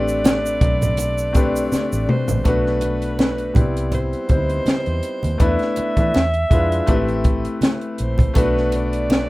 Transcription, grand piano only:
0.00 0.79 A3 loud
0.00 0.79 C4 medium
0.00 0.80 D4 medium
0.00 0.80 G4 medium
0.00 0.81 B4 loud
1.33 2.31 A3 medium
1.33 2.31 C4 medium
1.33 2.32 D4 medium
1.33 2.32 G4 medium
1.37 2.33 B4 medium
2.44 3.42 A3 medium
2.44 3.42 B3 medium
2.44 3.43 D4 medium
2.44 3.43 F#4 medium
2.48 3.44 B4 loud
3.54 4.19 G3 medium
3.54 4.20 B3 medium
3.54 4.21 C4 medium
3.54 4.21 E4 medium
3.54 4.21 B4 medium
4.27 5.25 G3 medium
4.27 5.27 C4 medium
4.27 4.37 D#4 soft
4.31 5.28 C5 medium
4.37 5.30 E4 medium
5.38 5.88 A3 medium
5.38 5.88 B3 medium
5.38 5.89 D4 medium
5.38 5.90 E4 medium
5.38 5.90 B4 loud
5.96 6.14 A3 medium
5.96 6.14 B3 medium
5.96 6.15 D4 medium
5.96 6.15 E4 medium
6.00 6.16 B4 medium
6.50 6.88 G#3 medium
6.50 6.88 D4 medium
6.50 6.87 E4 medium
6.50 6.89 F4 medium
6.50 6.89 B4 medium
6.86 8.16 A3 medium
6.86 8.17 C4 medium
6.86 8.17 E4 medium
6.86 8.18 G4 medium
6.90 8.18 B4 loud
8.34 9.29 A3 loud
8.34 9.29 B3 medium
8.34 9.29 D4 medium
8.34 9.29 F#4 medium
8.34 9.29 B4 medium

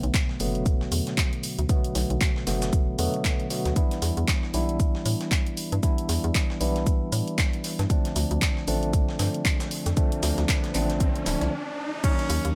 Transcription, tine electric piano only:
0.00 0.37 B2 medium
0.00 0.37 D3 medium
0.00 0.38 F#3 medium
0.00 0.38 A3 medium
0.00 0.38 B3 loud
0.40 1.67 B2 medium
0.40 1.67 D3 medium
0.40 1.67 F#3 medium
0.40 1.67 A3 medium
0.40 1.67 B3 loud
1.69 2.44 B2 medium
1.69 2.44 D3 medium
1.69 2.44 F#3 medium
1.69 2.44 A3 medium
1.69 2.45 B3 loud
2.47 2.96 B2 medium
2.47 2.96 D3 medium
2.47 2.97 F#3 medium
2.47 2.97 A3 medium
2.47 2.97 B3 medium
2.99 3.48 B2 loud
2.99 3.48 D3 medium
2.99 3.48 F#3 medium
2.99 3.48 A3 medium
2.99 3.48 B3 loud
3.50 3.74 B2 medium
3.50 3.74 D3 medium
3.50 3.74 F#3 medium
3.50 3.74 A3 medium
3.50 3.74 B3 medium
3.76 4.51 E3 medium
3.76 4.51 G3 medium
3.76 4.51 B3 medium
3.76 4.51 D4 medium
3.76 4.51 E4 loud
4.54 5.80 E3 medium
4.54 5.81 G3 medium
4.54 5.81 B3 medium
4.54 5.81 D4 medium
4.54 5.81 E4 medium
5.83 6.58 E3 medium
5.83 6.58 G3 medium
5.83 6.58 B3 medium
5.83 6.58 D4 medium
5.83 6.58 E4 loud
6.60 7.87 E3 medium
6.60 7.87 G3 medium
6.60 7.87 B3 medium
6.60 7.88 D4 medium
6.60 7.88 E4 medium
7.90 8.65 D3 medium
7.90 8.65 F3 medium
7.90 8.65 A3 medium
7.90 8.65 C4 medium
7.90 8.65 D4 loud
8.67 9.94 D3 medium
8.67 9.94 F3 medium
8.67 9.94 A3 medium
8.67 9.94 C4 medium
8.67 9.95 D4 loud
9.97 10.72 D3 medium
9.97 10.72 F3 medium
9.97 10.72 A3 medium
9.97 10.72 C4 medium
9.97 10.72 D4 loud
10.74 11.52 D3 medium
10.74 11.52 F3 medium
10.74 11.52 A3 medium
10.74 11.52 C4 medium
10.74 11.52 D4 medium
12.04 12.55 D#3 medium
12.04 12.55 F#3 medium
12.04 12.55 A#3 medium
12.04 12.55 C#4 medium
12.04 12.55 D#4 loud

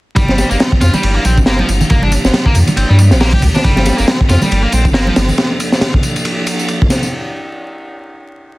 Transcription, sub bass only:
0.17 0.44 G1 loud
0.51 0.57 G1 medium
0.82 0.90 F2 medium
1.03 1.19 G1 medium
1.25 1.39 A#1 medium
1.38 1.63 G1 medium
1.69 1.84 G1 medium
1.91 2.18 G1 loud
2.24 2.30 G1 medium
2.55 2.63 F2 medium
2.77 2.85 G1 medium
2.90 3.13 G2 loud
3.12 3.37 A#1 medium
3.43 3.51 D2 medium
3.65 3.92 G1 loud
3.99 4.05 G1 medium
4.29 4.38 F2 medium
4.51 4.67 G1 medium
4.73 4.87 A#1 medium
4.85 5.11 G1 medium
5.17 5.32 G1 medium

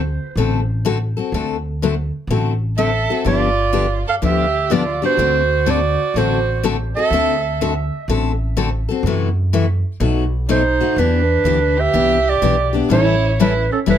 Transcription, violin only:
2.78 3.22 A4 medium
3.29 4.03 F4 medium
4.07 4.14 A4 medium
4.24 4.74 G4 medium
4.73 5.03 F4 medium
5.04 5.69 F#4 medium
5.69 6.16 F#4 medium
6.16 6.64 F#4 medium
6.96 7.56 A4 medium
10.49 11.00 D#4 medium
10.98 11.79 D4 medium
11.77 12.28 G4 medium
12.28 12.75 G4 medium
12.91 13.36 E4 medium
13.40 13.69 E4 medium
13.71 13.79 C#4 medium
13.90 13.98 E4 medium

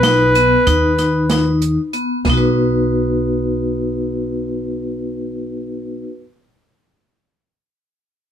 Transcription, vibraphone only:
0.04 0.28 D#4 medium
0.36 0.60 B3 medium
0.67 0.92 D#4 medium
0.99 1.23 D#4 medium
1.31 1.80 D#4 medium
1.93 2.18 B3 medium
2.25 6.02 B3 medium
2.30 6.06 D#4 medium
2.30 6.10 F#4 medium
2.37 6.14 B4 soft

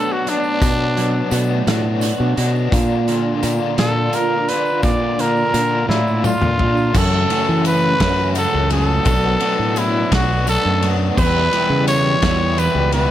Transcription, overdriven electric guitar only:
0.00 0.60 B2 medium
0.00 0.60 F#3 medium
0.00 0.27 B3 medium
0.00 0.27 D4 medium
0.00 0.25 F#4 medium
0.26 0.61 B3 medium
0.26 0.62 D4 medium
0.26 0.61 F#4 medium
0.61 1.32 B2 medium
0.61 1.31 F#3 loud
0.61 0.98 B3 medium
0.61 0.98 D4 loud
0.61 0.96 F#4 loud
0.97 1.31 B3 medium
0.97 1.33 D4 medium
0.97 1.33 F#4 medium
1.32 1.68 F#3 medium
1.32 1.67 B3 medium
1.32 1.68 D4 medium
1.32 1.66 F#4 medium
1.67 2.72 B2 medium
1.67 2.71 F#3 medium
1.67 2.38 B3 medium
1.67 2.38 D4 medium
1.67 2.36 F#4 medium
2.37 2.71 B3 medium
2.37 2.73 D4 medium
2.37 2.70 F#4 medium
2.72 3.79 A#2 medium
2.72 3.41 D3 loud
2.72 3.09 A#3 loud
2.72 3.08 D4 loud
2.72 3.07 F4 loud
3.07 3.43 A#3 medium
3.07 3.44 D4 medium
3.07 3.44 F4 medium
3.43 3.78 D3 medium
3.43 3.77 A#3 medium
3.43 3.77 D4 medium
3.43 3.76 F4 medium
3.77 4.81 A#2 medium
3.77 4.82 D3 medium
3.77 4.49 A#3 medium
3.77 4.48 D4 medium
3.77 4.47 F4 medium
4.48 4.82 A#3 medium
4.48 4.83 D4 medium
4.48 4.83 F4 medium
4.82 5.54 A#2 medium
4.82 5.53 D3 loud
4.82 5.19 A#3 loud
4.82 5.19 D4 loud
4.82 5.18 F4 loud
5.19 5.53 A#3 medium
5.19 5.54 D4 medium
5.19 5.55 F4 medium
5.54 5.89 D3 medium
5.54 5.88 A#3 medium
5.54 5.88 D4 medium
5.54 5.87 F4 medium
5.88 6.93 A#2 medium
5.88 6.93 D3 medium
5.88 6.60 A#3 medium
5.88 6.59 D4 medium
5.88 6.58 F4 loud
6.59 6.94 A#3 medium
6.59 6.93 D4 medium
6.59 6.93 F4 medium
6.93 7.28 F#2 medium
6.93 7.28 C#3 medium
6.93 7.29 F#3 medium
6.93 7.30 A3 medium
6.93 7.29 C#4 medium
6.93 7.30 F#4 medium
7.29 7.99 F#2 medium
7.29 7.99 C#3 medium
7.29 8.00 F#3 medium
7.29 8.00 A3 medium
7.29 8.00 C#4 medium
7.29 8.01 F#4 medium
8.00 8.35 F#2 medium
8.00 8.35 C#3 medium
8.00 8.36 F#3 loud
8.00 8.36 A3 medium
8.00 8.36 C#4 loud
8.00 8.38 F#4 loud
8.36 8.70 F#2 medium
8.36 8.70 C#3 medium
8.36 8.71 F#3 medium
8.36 8.71 A3 medium
8.36 8.71 C#4 medium
8.36 8.72 F#4 medium
8.71 9.04 F#2 medium
8.71 9.04 C#3 medium
8.71 9.06 F#3 medium
8.71 9.05 A3 medium
8.71 9.05 C#4 medium
8.71 9.07 F#4 medium
9.06 9.40 B2 medium
9.06 9.41 F#3 loud
9.06 9.42 B3 loud
9.06 9.41 D4 loud
9.06 9.42 F#4 medium
9.41 10.10 B2 medium
9.41 10.11 F#3 medium
9.41 10.11 B3 medium
9.41 10.11 D4 medium
9.41 10.12 F#4 medium
10.11 10.45 B2 medium
10.11 10.47 F#3 medium
10.11 10.47 B3 loud
10.11 10.47 D4 loud
10.11 10.48 F#4 loud
10.47 10.81 B2 medium
10.47 10.82 F#3 medium
10.47 10.82 B3 medium
10.47 10.82 D4 medium
10.47 10.83 F#4 loud
10.82 11.15 B2 medium
10.82 11.18 F#3 medium
10.82 11.18 B3 medium
10.82 11.15 D4 medium
10.82 11.19 F#4 medium
11.18 11.51 E2 medium
11.18 11.51 B2 medium
11.18 11.51 E3 medium
11.18 11.52 G3 loud
11.18 11.52 E4 loud
11.18 11.52 G4 medium
11.52 12.21 E2 medium
11.52 12.22 B2 medium
11.52 12.22 E3 medium
11.52 12.22 G3 medium
11.52 12.23 E4 medium
11.52 12.23 G4 loud
12.23 12.56 E2 loud
12.23 12.57 B2 medium
12.23 12.57 E3 loud
12.23 12.57 G3 loud
12.23 12.57 E4 medium
12.23 12.58 G4 loud
12.57 12.92 E2 medium
12.57 12.93 B2 medium
12.57 12.93 E3 medium
12.57 12.93 G3 medium
12.57 12.93 E4 medium
12.57 12.94 G4 medium
12.93 13.11 E2 medium
12.93 13.11 B2 medium
12.93 13.11 E3 medium
12.93 13.11 G3 medium
12.93 13.11 E4 medium
12.93 13.11 G4 medium

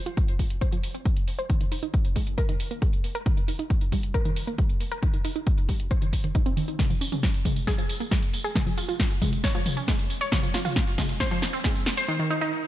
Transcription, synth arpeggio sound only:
0.06 0.09 F4 medium
0.39 0.46 G#3 medium
0.61 0.64 C5 loud
0.72 0.79 F3 medium
0.94 0.99 C4 medium
1.05 1.10 G#3 medium
1.39 1.43 C5 loud
1.50 1.54 D#3 medium
1.61 1.67 D#3 medium
1.72 1.74 D#4 medium
1.83 1.85 D#4 medium
2.16 2.22 G#3 medium
2.38 2.40 A#4 loud
2.49 2.55 D#3 medium
2.71 2.75 A#3 medium
2.82 2.86 G#3 medium
3.15 3.19 A#4 loud
3.26 3.30 D#3 medium
3.37 3.43 D#3 medium
3.48 3.51 D#4 medium
3.59 3.62 D#4 medium
3.92 3.99 G3 medium
4.14 4.17 A#4 loud
4.25 4.32 D#3 medium
4.47 4.52 A#3 medium
4.58 4.63 G3 medium
4.92 4.96 A#4 loud
5.03 5.07 D#3 medium
5.14 5.20 D#3 medium
5.25 5.27 D#4 medium
5.36 5.38 D#4 medium
5.69 5.75 G3 medium
5.91 5.93 C5 loud
6.02 6.08 D#3 medium
6.24 6.27 D#3 medium
6.35 6.39 D#4 medium
6.46 6.49 C4 loud
6.57 6.61 D#3 medium
6.68 6.74 D#4 medium
6.79 6.83 F3 medium
6.90 6.96 F3 medium
7.01 7.04 C#4 medium
7.12 7.15 C#4 medium
7.45 7.52 G#3 medium
7.67 7.70 G#4 loud
7.78 7.85 F3 medium
8.00 8.05 A#3 medium
8.11 8.16 G#3 medium
8.44 8.49 G#4 loud
8.55 8.60 F3 medium
8.66 8.73 F3 medium
8.78 8.80 F4 medium
8.89 8.91 F4 medium
9.22 9.28 G#3 medium
9.44 9.46 C#5 loud
9.55 9.61 F3 medium
9.77 9.81 C#4 medium
9.88 9.92 G#3 medium
10.21 10.25 C#5 loud
10.32 10.36 F3 medium
10.43 10.49 F3 medium
10.54 10.57 F4 medium
10.65 10.68 F4 medium
10.98 11.05 G#3 medium
11.20 11.23 C5 loud
11.31 11.38 F3 medium
11.53 11.58 C4 medium
11.64 11.69 G#3 medium
11.97 12.02 C5 loud
12.08 12.13 D#3 medium
12.19 12.26 D#3 medium
12.30 12.33 D#4 medium
12.41 12.44 D#4 medium

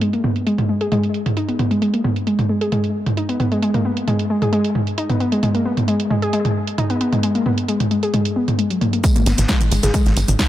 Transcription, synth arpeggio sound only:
0.01 0.11 G#3 medium
0.13 0.19 A#3 medium
0.24 0.31 B3 medium
0.47 0.51 G#3 medium
0.69 0.73 G#3 medium
0.81 0.87 G#4 medium
0.92 0.98 G#3 loud
1.37 1.41 D#4 medium
1.48 1.58 B3 medium
1.59 1.63 B3 medium
1.71 1.77 G#3 medium
1.82 1.92 G#3 medium
1.93 2.00 A#3 medium
2.04 2.11 B3 medium
2.27 2.31 G#3 medium
2.49 2.53 G#3 medium
2.61 2.67 G#4 medium
2.72 2.79 G#3 loud
3.17 3.21 D#4 medium
3.29 3.38 B3 medium
3.40 3.44 B3 medium
3.52 3.58 G#3 medium
3.62 3.72 G#3 medium
3.74 3.80 A#3 medium
3.85 3.92 B3 medium
4.07 4.11 G#3 medium
4.30 4.34 G#3 medium
4.42 4.48 G#4 medium
4.53 4.59 G#3 loud
4.98 5.02 D#4 medium
5.10 5.19 B3 medium
5.20 5.24 B3 medium
5.32 5.38 G#3 medium
5.43 5.53 G#3 medium
5.55 5.61 A#3 medium
5.65 5.72 B3 medium
5.88 5.92 G#3 medium
6.10 6.14 G#3 medium
6.22 6.28 G#4 medium
6.33 6.40 G#3 loud
6.78 6.82 D#4 medium
6.90 6.99 B3 medium
7.01 7.05 B3 medium
7.12 7.19 G#3 medium
7.23 7.33 G#3 medium
7.35 7.41 A#3 medium
7.46 7.52 B3 medium
7.68 7.72 G#3 medium
7.91 7.95 G#3 medium
8.03 8.09 G#4 medium
8.14 8.20 G#3 loud
8.36 8.46 B3 medium
8.59 8.63 G#3 medium
8.70 8.76 F#3 medium
8.81 8.88 A#3 medium
8.93 8.99 A#3 medium
9.04 9.14 G#3 medium
9.15 9.22 A#3 medium
9.26 9.33 B3 medium
9.49 9.53 G#3 medium
9.71 9.75 G#3 medium
9.83 9.89 G#4 medium
9.94 10.01 G#3 loud
10.39 10.43 D#4 medium

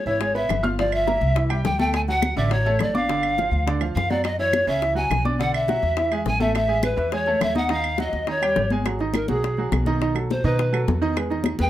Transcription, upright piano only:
0.06 0.18 E3 medium
0.06 0.18 E4 medium
0.06 0.18 E5 medium
0.20 0.32 G#3 medium
0.20 0.32 G#4 medium
0.20 0.33 G#5 medium
0.34 0.58 B3 medium
0.34 0.58 B4 medium
0.34 0.59 B5 medium
0.63 0.75 F4 medium
0.63 0.75 F5 medium
0.63 0.75 F6 medium
0.79 1.02 F3 medium
0.79 1.02 F4 medium
0.79 1.03 F5 medium
1.07 1.30 A#3 medium
1.07 1.31 A#4 medium
1.07 1.31 A#5 medium
1.35 1.47 E3 medium
1.35 1.47 E4 medium
1.35 1.47 E5 medium
1.49 1.73 G3 medium
1.49 1.73 G4 medium
1.49 1.74 G5 medium
1.79 2.02 A3 medium
1.79 2.03 A4 medium
1.79 2.03 A5 medium
2.08 2.32 F#3 medium
2.08 2.32 F#4 medium
2.08 2.32 F#5 medium
2.36 2.48 D3 medium
2.36 2.49 D4 medium
2.36 2.49 D5 medium
2.50 2.63 F#3 medium
2.50 2.63 F#4 medium
2.50 2.63 F#5 medium
2.66 2.89 A3 medium
2.66 2.89 A4 medium
2.66 2.90 A5 medium
2.94 3.06 D4 medium
2.94 3.06 D5 medium
2.94 3.06 D6 medium
3.09 3.32 D3 medium
3.09 3.33 D4 medium
3.09 3.33 D5 medium
3.38 3.61 F3 medium
3.38 3.62 F4 medium
3.38 3.62 F5 medium
3.67 3.78 D3 medium
3.67 3.79 D4 medium
3.67 3.79 D5 medium
3.81 4.04 F3 medium
3.81 4.05 F4 medium
3.81 4.05 F5 medium
4.10 4.34 F#3 medium
4.10 4.34 F#4 medium
4.10 4.34 F#5 medium
4.39 4.62 E3 medium
4.39 4.63 E4 medium
4.39 4.63 E5 medium
4.67 4.79 C#3 medium
4.67 4.79 C#4 medium
4.67 4.79 C#5 medium
4.82 4.94 E3 medium
4.82 4.94 E4 medium
4.82 4.94 E5 medium
4.95 5.19 F#3 medium
4.95 5.19 F#4 medium
4.95 5.20 F#5 medium
5.25 5.37 D4 medium
5.25 5.37 D5 medium
5.25 5.37 D6 medium
5.39 5.63 D3 medium
5.39 5.64 D4 medium
5.39 5.63 D5 medium
5.68 5.92 F#3 medium
5.68 5.92 F#4 medium
5.68 5.92 F#5 medium
5.97 6.09 E3 medium
5.97 6.09 E4 medium
5.97 6.09 E5 medium
6.12 6.35 G#3 medium
6.12 6.36 G#4 medium
6.12 6.36 G#5 medium
6.40 6.64 A3 medium
6.40 6.64 A4 medium
6.40 6.64 A5 medium
6.68 6.92 G#3 medium
6.68 6.93 G#4 medium
6.68 6.93 G#5 medium
6.96 7.09 E3 medium
6.96 7.09 E4 medium
6.96 7.09 E5 medium
7.12 7.24 G#3 medium
7.12 7.24 G#4 medium
7.12 7.25 G#5 medium
7.27 7.51 A3 medium
7.27 7.51 A4 medium
7.27 7.51 A5 medium
7.55 7.67 D#4 medium
7.55 7.68 D#5 medium
7.55 7.68 D#6 medium
7.70 7.94 D#3 medium
7.70 7.94 D#4 medium
7.70 7.94 D#5 medium
7.98 8.22 F#3 medium
7.98 8.23 F#4 medium
7.98 8.23 F#5 medium
8.28 8.40 D#3 medium
8.28 8.40 D#4 medium
8.28 8.40 D#5 medium
8.42 8.66 G3 medium
8.42 8.66 G4 medium
8.42 8.66 G5 medium
8.71 8.83 G#3 medium
8.71 8.83 G#4 medium
8.71 8.84 G#5 medium
8.87 8.98 F#3 medium
8.87 8.98 F#4 medium
8.87 8.98 G#4 medium
9.00 9.24 D#3 medium
9.00 9.24 D#4 medium
9.00 9.24 D#5 medium
9.29 9.53 F#3 medium
9.29 9.53 F#4 medium
9.29 9.53 G#4 medium
9.58 9.82 F#3 medium
9.58 9.82 F#4 medium
9.58 9.82 G#4 medium
9.87 9.99 D#3 medium
9.87 9.99 D#4 medium
9.87 9.99 D#5 medium
10.01 10.13 D#3 medium
10.01 10.13 D#4 medium
10.01 10.13 D#5 medium
10.15 10.39 F#3 medium
10.15 10.39 F#4 medium
10.15 10.39 A4 medium
10.44 10.68 D#3 medium
10.44 10.68 D#4 medium
10.44 10.69 D#5 medium
10.72 10.97 F#3 medium
10.72 10.97 F#4 medium
10.72 10.97 A4 medium
11.01 11.14 D#3 medium
11.01 11.14 D#4 medium
11.01 11.14 D#5 medium
11.16 11.28 G#3 medium
11.16 11.28 G#4 medium
11.16 11.28 B4 medium
11.30 11.55 D#3 medium
11.30 11.54 D#4 medium
11.30 11.55 D#5 medium
11.59 11.70 G#3 medium
11.59 11.70 G#4 medium
11.59 11.70 B4 medium

